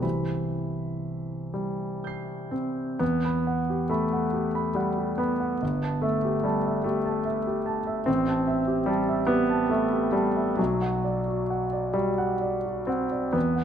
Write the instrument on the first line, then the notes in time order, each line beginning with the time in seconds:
grand piano
0.00 C2 E3 G4 C5 E5 B5
1.54 G3
2.04 G6 C7
2.51 C4
2.99 E2 B3
3.25 B5
3.47 F#5
3.70 G4
3.89 A3 B5
4.13 F#5
4.33 G4
4.55 B5
4.75 G3 F#5
4.98 G4
5.18 B3 B5
5.40 F#5
5.62 G1
5.82 A5
6.02 A3 E5
6.24 G4
6.44 G3 A5
6.66 E5
6.84 A3 G4
7.06 A5
7.25 E5
7.47 G4
7.66 A5
7.87 E5
8.06 A1 C4
8.28 A5
8.47 E5
8.67 G4
8.86 G3 A5
9.08 E5
9.27 B3 G4
9.49 A5
9.70 A3 E5
9.93 G4
10.12 G3 A5
10.36 E5
10.57 B1 F#3
10.82 F#5
11.04 D5
11.28 F#4
11.50 F#5
11.73 D5
11.94 G3 F#4
12.18 F#5
12.41 D5
12.66 F#4
12.87 C4 F#5
13.11 D5
13.33 E2 B3
13.56 F#5